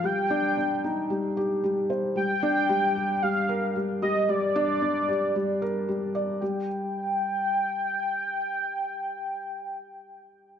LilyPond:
<<
  \new Staff \with { instrumentName = "Soft synth lead" } { \time 4/4 \key g \minor \tempo 4 = 113 g''2 r2 | g''2 f''4 r8 ees''8 | d''2. r4 | g''1~ |
g''1 | }
  \new Staff \with { instrumentName = "Felt piano" } { \time 4/4 \key g \minor g8 d'8 d'8 ees'8 g8 g'8 g8 c''8 | g8 d'8 g8 g'8 g8 bes'8 g8 g8 | g8 d'8 d'8 g'8 g8 bes'8 g8 d''8 | g8 r2. r8 |
r1 | }
>>